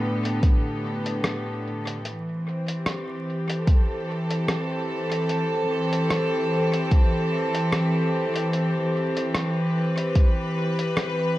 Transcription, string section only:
Already playing: A2 D3 B3 G4 A4
2.05 E3
2.38 C4
2.75 G4
3.58 A4
9.47 B4

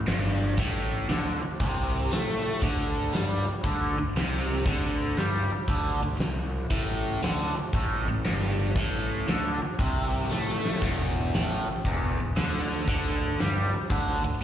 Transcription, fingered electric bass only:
0.07 G1
0.57 A1
1.09 D2
1.43 muted fingered electric bass stroke
1.60 C2
2.12 A2
2.62 D2
3.15 G2
3.48 muted fingered electric bass stroke
3.64 D2
3.99 D2
4.16 C2
4.66 D2
5.17 G2
5.52 muted fingered electric bass stroke
5.68 D2
6.02 D2
6.19 C2
6.71 A1
7.22 D2
7.56 muted fingered electric bass stroke
7.74 A1
8.08 A1
8.25 G1
8.76 A1
9.28 D2
9.63 muted fingered electric bass stroke
9.79 C2
10.31 A2
10.82 E1
11.34 A1
11.68 muted fingered electric bass stroke
11.85 E1
12.20 E1
12.37 D2
12.88 D2
13.41 G2
13.74 muted fingered electric bass stroke
13.90 D2
14.24 D2

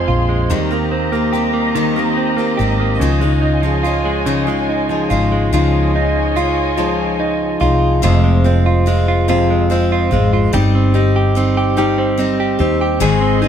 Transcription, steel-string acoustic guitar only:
0.50 D#3 G3 A#3 C4 G4
0.71 A#3 C4 G4
1.13 A#3 C4 G4
1.33 G3 A#3 C4 G4
1.75 D#3 G3 A#3 C4 G4
1.96 A#3 C4 G4
2.38 A#3 C4 G4
2.59 G3 A#3 C4 G4
3.01 C#3 F3 G#3 D#4 F4
3.21 G#3 D#4 F4
3.63 G#3 D#4 F4
3.84 F3 G#3 D#4 F4
4.26 C#3 F3 G#3 D#4 F4
4.47 G#3 D#4 F4
4.89 G#3 D#4 F4
5.10 F3 G#3 D#4 F4
5.53 C#3 F3 G#3 D#4 F4
6.36 F3 G#3 D#4 F4
6.77 C#3 F3 G#3 D#4 F4
7.60 G#3 D#4 F4
8.02 F2 C3 F3 G#3 C4 F4
8.44 F3 G#3 C4 F4
8.86 F3 G#3 C4 F4
9.28 F2 C3 F3 G#3 C4 F4
9.70 F3 G#3 C4 F4
10.11 F3 G#3 C4 F4
10.53 G3 C4 D#4 G4
10.94 C4 D#4 G4
11.35 G3 C4 D#4 G4
11.77 G3 C4 D#4 G4
12.18 G3 C4 D#4 G4
12.59 C4 D#4 G4
13.00 G#2 D#3 G#3 C4 D#4 G#4
13.42 G#3 C4 D#4 G#4

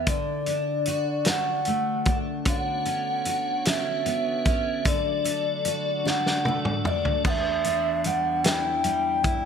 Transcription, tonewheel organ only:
2.47 D3 B3 C#4 F#4 C#5
4.87 F#3 A3 D4 A4 D5

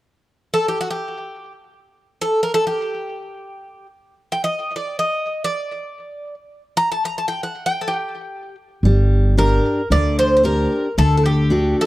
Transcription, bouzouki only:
0.54 A4
0.68 G4
0.81 F#4
0.91 G4
2.21 A4
2.43 A#4
2.54 A4
2.67 G4
4.32 G5
4.44 D#5
4.76 D5
4.99 D#5
5.44 D5
6.77 A#5
6.92 A5
7.05 A#5
7.18 A5
7.28 G5
7.43 F#5
7.66 G5
7.81 A4
7.88 G4
9.38 A#4
9.92 D5
10.19 C5
10.37 C5
10.45 A#4
10.98 A4
11.17 A4
11.26 G4
11.81 A4

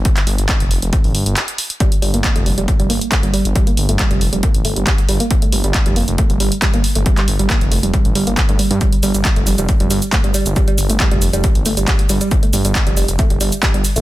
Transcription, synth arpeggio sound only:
1.80 G3
2.02 G3
2.14 A#3
2.36 A3
2.46 G3
2.58 G3
2.80 G3
2.90 A#3
3.12 A3
3.23 G3
3.34 G3
3.55 G3
3.67 A#3
3.89 A3
3.99 G3
4.11 G3
4.33 G3
4.43 A#3
4.65 A3
4.76 G3
4.87 G3
5.09 G3
5.20 A#3
5.42 A3
5.53 G3
5.64 G3
5.86 G3
5.96 A#3
6.18 A3
6.30 G3
6.40 G3
6.62 G3
6.74 A#3
6.96 A3
7.06 G3
7.17 G3
7.39 G3
7.50 A#3
7.72 A3
7.83 G3
7.93 G3
8.15 G3
8.27 A#3
8.49 A3
8.59 G3
8.71 G3
8.81 G3
9.03 G3
9.15 G3
9.37 A3
9.47 G3
9.58 G3
9.80 G3
9.91 G3
10.12 A3
10.24 G3
10.34 G3
10.56 G3
10.68 G3
10.90 A3
11.00 G3
11.11 G3
11.33 G3
11.44 G3
11.66 A3
11.77 G3
11.88 G3
12.10 G3
12.21 G3
12.43 A3
12.53 G3
12.65 G3
12.87 G3
12.97 G3
13.19 A3
13.31 G3
13.41 G3
13.63 G3
13.74 G3
13.96 A3

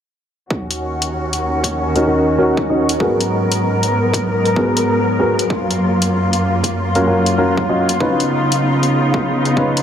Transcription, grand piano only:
1.95 C#4 D#4 F#4 A#4
2.07 C#4 D#4 F#4 A#4
2.38 C#4 D#4 F#4 A#4
2.70 C#4 D#4 F#4 D#5
3.01 B3 F#4 G#4 A#4
4.57 B3 F#4 G#4 A#4
5.19 B3 F#4 G#4 A#4
6.95 C#4 F4 F#4 A#4
7.07 C#4 F4 F#4 A#4
7.38 C#4 F4 F#4 A#4
7.69 C#4 F4 F#4 D#5
8.01 C#4 D#4 F4 B4
9.57 C#4 D#4 F4 B4

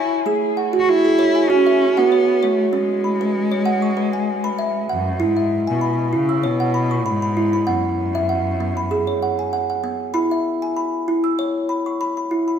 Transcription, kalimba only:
Already playing: E3 G#5
0.26 A3 G#4
0.57 F#5
0.73 F#4
1.05 G#4
1.19 C#5
1.35 G#5
1.50 F#4
1.66 E5
1.97 F#4 F#5
2.12 C#5
2.43 C#5
2.73 C#4
3.04 B5
3.21 B4
3.51 C#5
3.65 F#5
3.82 C#6
3.97 B4
4.13 G#5
4.44 B4 B5
4.59 E5
4.89 F#5
5.20 E4
5.36 E5
5.67 G#5
5.81 B5
6.13 E4
6.29 E6
6.43 C#5
6.60 F#5
6.74 B5
6.91 C#6
7.06 B5
7.22 B5
7.37 E4
7.53 B5
7.67 B3 F#5
8.15 E5
8.29 F#5
8.60 B3
8.77 B5
8.91 G#4
9.07 C#5
9.22 F#5
9.39 G#5
9.53 F#5
9.70 F#5
9.84 B3
10.14 E4 B5
10.31 E5
10.62 G#5
10.76 B5
11.08 E4
11.24 E6
11.39 C#5
11.69 B5
11.86 C#6
12.01 B5
12.17 B5
12.31 E4
12.48 B5

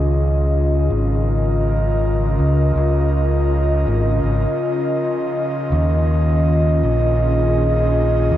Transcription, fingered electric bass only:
Already playing: C#2
0.90 G#1
2.39 C#2
2.75 C#2
3.87 G#1
4.24 G#1
5.72 D#2
6.83 A#1
8.31 D#2

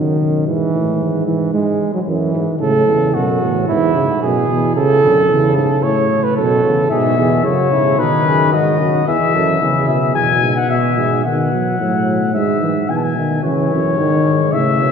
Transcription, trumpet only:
6.90 E5
7.45 C#5
7.99 B4
8.53 D#5
9.08 E5
9.88 E5
10.15 G#5
10.56 F#5
10.70 E5
11.25 F#5
12.34 E5
12.89 G#5
12.96 A5
13.03 G#5
13.43 C#5
14.52 E5

